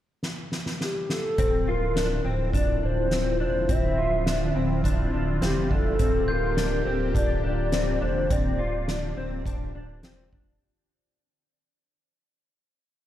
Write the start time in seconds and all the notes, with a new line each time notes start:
0.23 snare
0.52 snare
0.66 snare
0.81 G4, snare
1.10 A4, snare
1.38 D1 D3 F3 C4 E4 F4, kick, closed hi-hat
1.68 F4 A#4
1.96 D4, snare, closed hi-hat
2.25 D1 C4
2.53 D4 D5, kick, closed hi-hat
2.82 D1 D4 C5
3.11 C4, snare, closed hi-hat
3.40 E1 D4 C5
3.69 D1 C4 E5, kick, closed hi-hat
3.98 F4
4.26 D4, snare, closed hi-hat
4.55 D1 C4
4.84 D4, kick, closed hi-hat
5.13 D1 D4
5.42 E1 C4 G4, snare, closed hi-hat
5.71 E1 D4 A4, kick
5.99 D1 A#3 C4 G4, kick, closed hi-hat
6.28 F4 A#4 G6
6.57 D4, snare, closed hi-hat
6.85 D1 C4
7.15 D4 D5, kick, closed hi-hat
7.43 D1 D4 D5
7.72 C4, snare, closed hi-hat
8.01 E1 D4 C5
8.30 D1 C4 D5, kick, closed hi-hat
8.59 F4
8.88 D4, snare, closed hi-hat
9.17 D1 C4
9.46 D4, kick, closed hi-hat
9.74 D1 D4
10.03 E1 C4, snare, closed hi-hat
10.33 E1 D4, kick